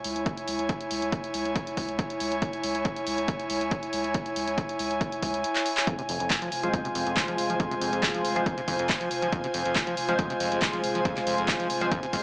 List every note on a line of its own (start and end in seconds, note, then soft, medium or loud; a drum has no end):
0.00 5.87 E4 medium
0.00 5.87 C#5 medium
0.00 12.23 G#5 medium
0.04 0.15 C#2 loud
0.04 open hi-hat loud
0.16 0.26 C#2 medium
0.16 closed hi-hat soft
0.26 kick loud
0.26 closed hi-hat medium
0.37 closed hi-hat medium
0.48 0.59 C#2 loud
0.48 open hi-hat loud
0.59 0.69 C#2 medium
0.59 closed hi-hat soft
0.69 kick loud
0.69 closed hi-hat medium
0.81 closed hi-hat soft
0.91 1.02 C#2 loud
0.91 open hi-hat loud
1.02 1.12 C#2 medium
1.02 closed hi-hat medium
1.12 kick loud
1.12 closed hi-hat medium
1.24 closed hi-hat soft
1.34 1.45 C#2 loud
1.34 open hi-hat loud
1.45 1.55 C#2 medium
1.45 closed hi-hat soft
1.56 kick loud
1.56 closed hi-hat medium
1.67 closed hi-hat soft
1.77 1.88 C#2 loud
1.77 kick medium
1.77 open hi-hat loud
1.89 1.99 C#2 medium
1.89 closed hi-hat soft
1.99 kick loud
1.99 closed hi-hat medium
2.10 closed hi-hat medium
2.20 2.31 C#2 loud
2.20 open hi-hat loud
2.32 2.42 C#2 medium
2.32 closed hi-hat medium
2.42 kick loud
2.42 closed hi-hat medium
2.53 closed hi-hat medium
2.63 2.74 C#2 loud
2.63 open hi-hat loud
2.75 2.85 C#2 medium
2.75 closed hi-hat medium
2.85 kick loud
2.85 closed hi-hat medium
2.96 closed hi-hat soft
3.07 3.18 C#2 loud
3.07 open hi-hat loud
3.18 3.28 C#2 medium
3.18 closed hi-hat medium
3.28 kick loud
3.28 closed hi-hat medium
3.40 closed hi-hat medium
3.50 3.61 C#2 loud
3.50 open hi-hat loud
3.61 3.71 C#2 medium
3.61 closed hi-hat medium
3.71 kick loud
3.71 closed hi-hat medium
3.83 closed hi-hat medium
3.93 4.04 C#2 loud
3.93 open hi-hat loud
4.04 4.14 C#2 medium
4.04 closed hi-hat soft
4.14 kick loud
4.14 closed hi-hat medium
4.26 closed hi-hat medium
4.36 4.47 C#2 loud
4.36 open hi-hat loud
4.48 4.58 C#2 medium
4.48 closed hi-hat medium
4.58 kick loud
4.58 closed hi-hat medium
4.69 closed hi-hat medium
4.79 4.90 C#2 loud
4.79 open hi-hat loud
4.91 5.01 C#2 medium
4.91 closed hi-hat medium
5.01 kick loud
5.01 closed hi-hat medium
5.12 closed hi-hat medium
5.22 5.33 C#2 loud
5.22 kick medium
5.22 open hi-hat loud
5.34 5.44 C#2 medium
5.34 closed hi-hat medium
5.44 closed hi-hat medium
5.56 clap medium
5.56 closed hi-hat medium
5.66 open hi-hat loud
5.77 clap medium
5.77 closed hi-hat medium
5.87 5.97 F2 loud
5.87 12.23 F4 medium
5.87 kick loud
5.87 closed hi-hat medium
5.99 6.02 C3 medium
5.99 closed hi-hat medium
6.09 6.20 F1 loud
6.09 6.18 F2 medium
6.09 12.23 C5 medium
6.09 open hi-hat loud
6.20 6.30 F1 medium
6.20 6.32 F2 medium
6.20 closed hi-hat medium
6.30 6.37 A#2 medium
6.30 kick loud
6.30 clap loud
6.30 closed hi-hat medium
6.42 6.50 F3 medium
6.42 closed hi-hat medium
6.52 6.63 F1 loud
6.52 open hi-hat loud
6.63 6.73 F1 medium
6.63 6.69 F3 medium
6.63 8.33 G#3 medium
6.63 8.33 F4 medium
6.63 8.33 C5 loud
6.63 closed hi-hat medium
6.74 6.83 F2 loud
6.74 kick loud
6.74 closed hi-hat medium
6.85 6.88 C3 medium
6.85 closed hi-hat medium
6.95 7.06 F1 loud
6.95 7.05 F2 medium
6.95 open hi-hat loud
7.07 7.17 F1 medium
7.07 7.18 F2 medium
7.07 closed hi-hat medium
7.17 7.23 A#2 medium
7.17 kick loud
7.17 clap loud
7.17 closed hi-hat medium
7.28 7.37 F3 medium
7.28 closed hi-hat medium
7.38 7.49 F1 loud
7.38 open hi-hat loud
7.50 7.60 F1 medium
7.50 7.55 F3 medium
7.50 closed hi-hat medium
7.60 7.69 F2 loud
7.60 kick loud
7.60 closed hi-hat medium
7.71 7.75 C3 medium
7.71 closed hi-hat medium
7.81 7.92 F1 loud
7.81 7.91 F2 medium
7.81 open hi-hat loud
7.93 8.03 F1 medium
7.93 8.04 F2 medium
7.93 closed hi-hat medium
8.03 8.09 A#2 medium
8.03 kick loud
8.03 clap loud
8.03 closed hi-hat medium
8.14 8.23 F3 medium
8.14 closed hi-hat medium
8.25 8.36 F1 loud
8.25 open hi-hat loud
8.36 8.46 F1 medium
8.36 8.42 F3 medium
8.36 8.44 G#3 medium
8.36 8.44 F4 medium
8.36 8.44 C5 loud
8.36 closed hi-hat medium
8.46 8.56 F2 loud
8.46 kick loud
8.46 closed hi-hat medium
8.58 8.61 C3 medium
8.58 closed hi-hat medium
8.68 8.79 F1 loud
8.68 8.77 F2 medium
8.68 kick medium
8.68 open hi-hat loud
8.79 8.89 F1 medium
8.79 8.91 F2 medium
8.79 closed hi-hat medium
8.89 8.96 A#2 medium
8.89 kick loud
8.89 clap loud
8.89 closed hi-hat medium
9.01 9.09 F3 medium
9.01 closed hi-hat medium
9.11 9.22 F1 loud
9.11 open hi-hat loud
9.22 9.32 F1 medium
9.22 9.28 F3 medium
9.22 closed hi-hat medium
9.32 9.42 F2 loud
9.32 kick loud
9.32 closed hi-hat medium
9.44 9.47 C3 medium
9.44 closed hi-hat medium
9.54 9.65 F1 loud
9.54 9.64 F2 medium
9.54 open hi-hat loud
9.65 9.76 F1 medium
9.65 9.77 F2 medium
9.65 closed hi-hat medium
9.76 9.82 A#2 medium
9.76 kick loud
9.76 clap loud
9.76 closed hi-hat medium
9.87 9.95 F3 medium
9.87 closed hi-hat medium
9.97 10.08 F1 loud
9.97 open hi-hat loud
10.09 10.19 F1 medium
10.09 10.14 F3 medium
10.09 11.79 G#3 medium
10.09 11.79 F4 medium
10.09 11.79 C5 loud
10.09 closed hi-hat medium
10.19 10.28 F2 loud
10.19 kick loud
10.19 closed hi-hat medium
10.30 10.34 C3 medium
10.30 closed hi-hat medium
10.40 10.51 F1 loud
10.40 10.50 F2 medium
10.40 open hi-hat loud
10.52 10.62 F1 medium
10.52 10.63 F2 medium
10.52 closed hi-hat medium
10.62 10.68 A#2 medium
10.62 kick loud
10.62 clap loud
10.62 closed hi-hat medium
10.73 10.82 F3 medium
10.73 closed hi-hat medium
10.84 10.95 F1 loud
10.84 open hi-hat loud
10.95 11.05 F1 medium
10.95 11.01 F3 medium
10.95 closed hi-hat medium
11.05 11.15 F2 loud
11.05 kick loud
11.05 closed hi-hat medium
11.16 11.20 C3 medium
11.16 clap soft
11.16 closed hi-hat medium
11.27 11.38 F1 loud
11.27 11.36 F2 medium
11.27 open hi-hat loud
11.38 11.48 F1 medium
11.38 11.50 F2 medium
11.38 closed hi-hat medium
11.48 11.55 A#2 medium
11.48 kick loud
11.48 clap loud
11.48 closed hi-hat medium
11.60 11.68 F3 medium
11.60 closed hi-hat soft
11.70 11.81 F1 loud
11.70 open hi-hat loud
11.81 11.91 F1 medium
11.81 11.87 F3 medium
11.81 11.89 G#3 medium
11.81 11.89 F4 medium
11.81 11.89 C5 loud
11.81 closed hi-hat medium
11.91 12.01 F2 loud
11.91 kick loud
11.91 closed hi-hat medium
12.03 12.06 C3 medium
12.03 closed hi-hat medium
12.13 12.23 F1 loud
12.13 12.17 F2 medium
12.13 12.22 G#3 medium
12.13 12.22 F4 medium
12.13 12.22 C5 medium
12.13 kick medium
12.13 open hi-hat loud